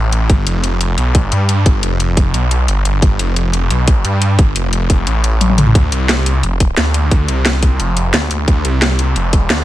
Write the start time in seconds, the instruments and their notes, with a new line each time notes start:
Already playing: detuned saw bass A1
0.13 closed hi-hat
0.30 detuned saw bass G1, kick, closed hi-hat
0.47 detuned saw bass F1, closed hi-hat
0.64 closed hi-hat
0.81 closed hi-hat
0.98 detuned saw bass B1, closed hi-hat
1.15 kick, closed hi-hat
1.32 detuned saw bass G2, closed hi-hat
1.49 closed hi-hat
1.66 detuned saw bass G1, kick, closed hi-hat
1.83 detuned saw bass F1, closed hi-hat
2.00 closed hi-hat
2.17 kick, closed hi-hat
2.34 detuned saw bass B1, closed hi-hat
2.51 closed hi-hat
2.68 detuned saw bass G1, closed hi-hat
2.85 detuned saw bass G1, closed hi-hat
3.02 detuned saw bass G1, kick, closed hi-hat
3.19 detuned saw bass F1, closed hi-hat
3.36 closed hi-hat
3.53 closed hi-hat
3.70 detuned saw bass B1, closed hi-hat
3.88 kick, closed hi-hat
4.04 detuned saw bass G2, closed hi-hat
4.22 closed hi-hat
4.39 detuned saw bass G1, kick, closed hi-hat
4.56 detuned saw bass F1, closed hi-hat
4.73 closed hi-hat
4.90 kick, closed hi-hat
5.07 detuned saw bass A1, closed hi-hat
5.24 closed hi-hat
5.41 closed hi-hat, high tom
5.50 high tom
5.58 closed hi-hat, mid tom
5.67 mid tom
5.75 detuned saw bass D2, kick, closed hi-hat
5.92 detuned saw bass C2, closed hi-hat
6.09 snare, closed hi-hat
6.26 closed hi-hat
6.43 detuned saw bass F1, closed hi-hat
6.60 kick, closed hi-hat
6.77 detuned saw bass D2, snare, closed hi-hat
6.94 closed hi-hat
7.11 detuned saw bass D2, kick, closed hi-hat
7.28 detuned saw bass C2, closed hi-hat
7.46 snare, closed hi-hat
7.63 kick, closed hi-hat
7.80 detuned saw bass F1, closed hi-hat
7.97 closed hi-hat
8.14 detuned saw bass D2, snare, closed hi-hat
8.31 detuned saw bass D2, closed hi-hat
8.48 detuned saw bass D2, kick, closed hi-hat
8.65 detuned saw bass C2, closed hi-hat
8.82 snare, closed hi-hat
8.99 closed hi-hat
9.16 detuned saw bass F1, closed hi-hat
9.33 kick, closed hi-hat
9.50 detuned saw bass D2, snare, closed hi-hat